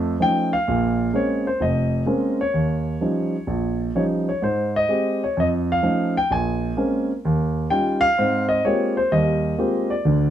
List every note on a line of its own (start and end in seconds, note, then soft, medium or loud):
0.00 0.14 F2 medium
0.00 0.14 A3 medium
0.20 0.53 F3 medium
0.20 0.54 A3 soft
0.20 0.53 C#4 soft
0.20 0.54 D#4 medium
0.20 0.54 G5 loud
0.53 1.17 F5 medium
0.68 1.09 A#1 medium
0.68 1.08 A#2 medium
1.13 1.47 G#3 medium
1.13 1.47 A#3 soft
1.13 1.47 C4 soft
1.13 1.47 C#4 medium
1.13 1.47 C#5 medium
1.47 1.62 C5 medium
1.60 2.02 F1 medium
1.60 2.36 D#5 medium
2.06 2.40 G#3 medium
2.06 2.40 A#3 soft
2.06 2.40 C4 soft
2.06 2.41 C#4 medium
2.41 3.77 C#5 medium
2.54 2.95 D#2 medium
3.01 3.34 F3 soft
3.01 3.35 G3 soft
3.01 3.35 C#4 soft
3.01 3.35 D#4 medium
3.47 3.89 A#1 medium
3.95 4.28 F3 soft
3.95 4.29 G3 soft
3.95 4.29 C#4 soft
3.95 4.29 D#4 medium
3.95 4.03 C#5 medium
4.29 4.42 C#5 medium
4.42 4.83 G#2 medium
4.42 4.75 C5 medium
4.76 5.23 D#5 medium
4.89 5.22 G#3 medium
4.89 5.22 C4 soft
4.89 5.23 G4 medium
5.24 5.37 C#5 medium
5.37 5.77 F2 medium
5.37 5.47 D#5 medium
5.72 6.14 F5 medium
5.83 6.16 F3 medium
5.83 6.16 A3 soft
5.83 6.16 C#4 soft
5.83 6.16 D#4 medium
6.17 6.32 G5 medium
6.31 6.71 A#1 medium
6.31 7.05 G#5 medium
6.77 7.10 G#3 medium
6.77 7.10 A#3 soft
6.77 7.10 C4 soft
6.77 7.10 C#4 medium
7.25 7.65 D#2 medium
7.70 8.04 G3 medium
7.70 8.04 C#4 soft
7.70 8.04 D#4 soft
7.70 8.04 F4 medium
7.70 8.00 G5 medium
8.01 8.45 F5 loud
8.18 8.59 G#2 medium
8.18 8.59 C4 medium
8.49 8.63 D#5 medium
8.65 8.98 G#3 medium
8.65 8.98 A#3 soft
8.65 8.98 C4 soft
8.65 8.98 F4 soft
8.65 8.98 G4 medium
8.65 8.97 C#5 medium
8.97 9.12 C5 medium
9.12 9.52 D#2 medium
9.12 9.53 G3 medium
9.12 9.93 D#5 medium
9.58 9.92 G#3 medium
9.58 9.91 A#3 soft
9.58 9.92 C4 medium
9.58 9.92 F4 soft
9.58 9.92 G4 medium
9.90 10.30 D5 medium
10.05 10.30 D2 medium
10.05 10.30 D3 medium